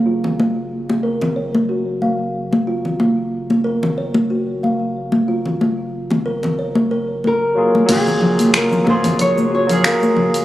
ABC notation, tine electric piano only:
X:1
M:4/4
L:1/16
Q:"Swing 16ths" 1/4=92
K:Gblyd
V:1 name="Tine electric piano"
[G,B,Af]16- | [G,B,Af]16- | [G,B,Af]12- [G,B,Af]2 [G,B,FA]2 | [G,B,FA]6 [G,B,FA]4- [G,B,FA] [G,B,Af]4- [G,B,Af] |]